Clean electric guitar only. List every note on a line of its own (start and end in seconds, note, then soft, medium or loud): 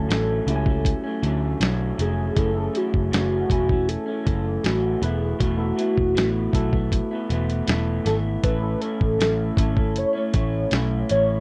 0.00 0.11 C#4 medium
0.09 0.46 D3 medium
0.09 0.47 F#3 medium
0.09 0.48 A3 medium
0.09 0.49 C#4 medium
0.47 0.66 D3 medium
0.47 0.67 F#3 medium
0.47 0.67 A3 medium
0.47 0.65 C#4 medium
0.66 1.06 F#3 soft
0.66 1.05 A3 soft
0.66 1.02 C#4 medium
1.04 1.24 A3 soft
1.04 1.23 C#4 medium
1.08 1.23 F#3 soft
1.22 1.59 D3 medium
1.22 1.60 F#3 medium
1.22 1.61 A3 medium
1.26 1.62 C#4 medium
1.60 1.97 D3 medium
1.60 1.98 F#3 medium
1.60 1.99 A3 medium
1.60 2.00 C#4 medium
1.98 2.36 D3 medium
1.98 2.37 F#3 medium
1.98 2.37 A3 medium
1.98 2.37 C#4 medium
2.36 2.72 F#2 medium
2.36 2.74 E3 medium
2.36 2.75 A3 medium
2.36 2.76 C#4 medium
2.73 3.10 F#2 medium
2.73 3.11 E3 medium
2.73 3.12 A3 medium
2.73 3.13 C#4 medium
3.11 3.48 F#2 medium
3.11 3.49 E3 medium
3.11 3.51 A3 medium
3.11 3.51 C#4 medium
3.49 3.69 F#2 medium
3.49 3.70 E3 medium
3.49 3.70 A3 medium
3.53 3.68 C#4 medium
3.69 4.09 E3 soft
3.69 4.07 A3 soft
3.69 4.05 C#4 medium
4.06 4.26 A3 soft
4.06 4.26 C#4 medium
4.10 4.24 E3 soft
4.24 4.62 F#2 medium
4.24 4.63 E3 medium
4.24 4.64 A3 medium
4.24 4.65 C#4 medium
4.64 5.02 F#2 medium
4.64 5.00 E3 medium
4.64 5.01 A3 medium
4.64 5.04 C#4 medium
5.01 5.37 E3 medium
5.01 5.39 A3 medium
5.01 5.39 B3 medium
5.01 5.40 E4 medium
5.39 5.75 E3 medium
5.39 5.76 A3 medium
5.39 5.78 B3 medium
5.39 5.79 E4 medium
5.76 6.14 E3 medium
5.76 6.14 A3 medium
5.76 6.15 B3 medium
5.76 6.16 E4 medium
6.15 6.51 E3 medium
6.15 6.53 A3 medium
6.15 6.54 B3 medium
6.15 6.55 E4 medium
6.52 6.72 E3 medium
6.52 6.73 A3 medium
6.52 6.73 B3 medium
6.56 6.71 E4 medium
6.72 7.12 B3 soft
6.72 7.10 E4 medium
6.77 7.13 A3 soft
7.11 7.30 A3 soft
7.11 7.31 B3 medium
7.11 7.30 E4 medium
7.29 7.66 E3 medium
7.29 7.67 A3 medium
7.29 7.68 B3 medium
7.29 7.69 E4 medium
7.67 8.03 E3 medium
7.67 8.05 A3 medium
7.67 8.06 B3 medium
7.67 8.07 E4 medium
8.05 8.44 E3 medium
8.05 8.43 A3 medium
8.05 8.45 B3 medium
8.05 8.45 E4 medium
8.43 8.80 A2 medium
8.43 8.81 A3 medium
8.43 8.82 C#4 medium
8.43 8.83 E4 medium
8.81 9.18 A2 medium
8.81 9.19 A3 medium
8.81 9.19 C#4 medium
8.81 9.20 E4 medium
9.19 9.55 A2 medium
9.19 9.57 A3 medium
9.19 9.58 C#4 medium
9.19 9.59 E4 medium
9.56 9.76 A2 medium
9.56 9.77 A3 medium
9.56 9.76 C#4 medium
9.60 9.73 E4 medium
9.75 10.14 C#4 soft
9.75 10.12 E4 soft
9.79 10.16 A3 soft
10.13 10.32 A3 soft
10.13 10.33 C#4 soft
10.13 10.33 E4 soft
10.32 10.70 A2 medium
10.32 10.71 A3 medium
10.32 10.72 C#4 medium
10.32 10.73 E4 medium
10.71 11.08 A2 medium
10.71 11.10 A3 medium
10.71 11.10 C#4 medium
10.71 11.11 E4 medium
11.09 11.40 A2 medium
11.09 11.40 A3 medium
11.09 11.40 C#4 medium
11.13 11.40 E4 medium